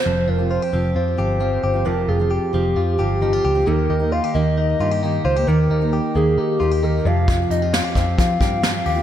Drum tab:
HH |--------|--------|--------|--------|
SD |--------|--------|--------|--------|
BD |--------|--------|--------|--------|

HH |xxxxxxxo|
SD |--o---o-|
BD |o--ooo--|